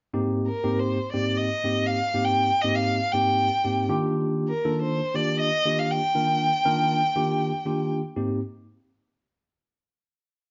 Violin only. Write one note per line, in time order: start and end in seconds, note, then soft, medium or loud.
0.47 0.81 A#4 medium
0.79 1.12 C5 medium
1.13 1.38 D5 medium
1.37 1.88 D#5 medium
1.87 2.26 F5 medium
2.25 2.63 G5 medium
2.62 2.77 D#5 medium
2.76 3.14 F5 medium
3.13 3.89 G5 medium
4.48 4.79 A#4 medium
4.82 5.17 C5 medium
5.16 5.40 D5 medium
5.40 5.80 D#5 loud
5.79 5.92 F5 medium
5.91 7.92 G5 loud